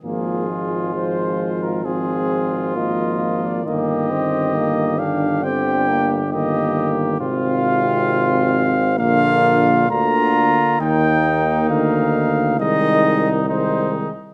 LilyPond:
<<
  \new Staff \with { instrumentName = "Cornet" } { \time 4/4 \key ees \major \tempo 4 = 67 aes'4 c''8. bes'16 aes'4 ees''8. d''16 | ees''4. f''8 g''4 ees''8. r16 | f''2 f''4 bes''4 | g''4 f''4 ees''4 c''8 r8 | }
  \new Staff \with { instrumentName = "Trumpet" } { \time 4/4 \key ees \major f'2 f'2 | g'2 g'4 g'4 | f'2 f'4 f'4 | ees'2 ees'4 ees'8 r8 | }
  \new Staff \with { instrumentName = "French horn" } { \time 4/4 \key ees \major bes8 aes4. c'4 bes4 | bes8 c'8 bes8 d'8 c'8 bes8 bes4 | c'2 bes4 bes4 | bes2 aes4 aes8 r8 | }
  \new Staff \with { instrumentName = "Trombone" } { \clef bass \time 4/4 \key ees \major f4 f4 f4 f4 | ees2 d4 ees4 | c2 d4 d4 | ees2 ees4 ees8 r8 | }
  \new Staff \with { instrumentName = "Tuba" } { \clef bass \time 4/4 \key ees \major aes,,1 | g,,1 | aes,,2 bes,,4 d,4 | ees,4 d,4 c,4. r8 | }
>>